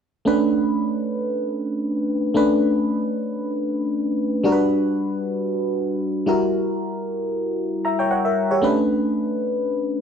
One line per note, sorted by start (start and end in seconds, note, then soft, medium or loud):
0.25 2.31 A3 medium
0.25 2.31 C#4 medium
0.25 2.32 D4 medium
0.25 2.32 B4 medium
2.34 4.40 A3 medium
2.34 4.41 C#4 medium
2.34 4.41 D4 medium
2.34 4.41 B4 medium
4.44 6.24 G3 medium
4.44 6.24 D4 medium
4.44 6.24 F#4 medium
4.44 4.52 A#4 medium
4.52 6.28 B4 medium
6.26 8.06 G3 medium
6.26 8.07 E4 medium
6.26 7.82 F#4 medium
6.26 7.82 A#4 medium
7.85 7.99 E5 medium
7.85 7.98 A#5 medium
7.99 8.10 C#5 medium
7.99 8.10 G5 medium
8.11 8.25 C#5 soft
8.11 8.24 F#5 medium
8.25 8.50 A#4 soft
8.25 8.50 E5 medium
8.51 8.76 G4 soft
8.51 8.76 C#5 medium
8.62 10.01 A3 medium
8.62 10.01 C#4 medium
8.62 10.01 D4 medium
8.62 10.01 B4 medium